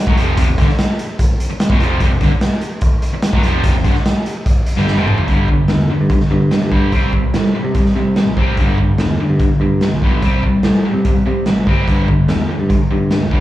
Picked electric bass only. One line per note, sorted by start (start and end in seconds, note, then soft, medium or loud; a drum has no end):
0.07 0.17 B1 loud
0.18 0.37 F1 medium
0.38 0.47 F1 medium
0.48 0.58 F1 medium
0.58 0.68 G1 loud
0.69 muted picked electric bass stroke soft
1.50 muted picked electric bass stroke soft
1.70 1.80 B1 loud
1.80 1.99 F1 medium
2.00 2.10 F1 medium
2.11 2.21 F1 medium
2.21 2.31 G1 medium
3.13 muted picked electric bass stroke soft
3.33 3.43 B1 loud
3.44 3.63 F1 medium
3.64 3.74 F1 medium
3.76 3.84 F1 medium
3.84 3.94 G1 medium
3.97 muted picked electric bass stroke soft
4.77 4.96 G1 medium
4.97 5.26 F1 loud
5.28 5.66 G1 medium
5.69 5.88 E2 medium
6.01 6.19 G2 medium
6.31 6.59 G2 medium
6.62 6.90 G2 medium
6.92 7.30 C2 medium
7.34 7.53 A2 medium
7.64 7.84 C3 medium
7.95 8.24 C3 medium
8.25 8.55 A1 medium
8.57 8.95 G1 medium
8.99 9.18 E2 medium
9.29 9.49 G2 medium
9.60 9.89 G2 medium
9.92 10.20 B1 medium
10.23 10.61 C2 medium
10.64 10.83 A2 medium
10.94 11.13 C3 medium
11.27 11.45 C3 medium
11.46 11.65 A1 medium
11.67 11.86 G1 medium
11.87 12.25 G1 medium
12.29 12.48 E2 medium
12.60 12.79 G2 medium
12.91 13.19 G2 medium
13.21 13.40 E1 medium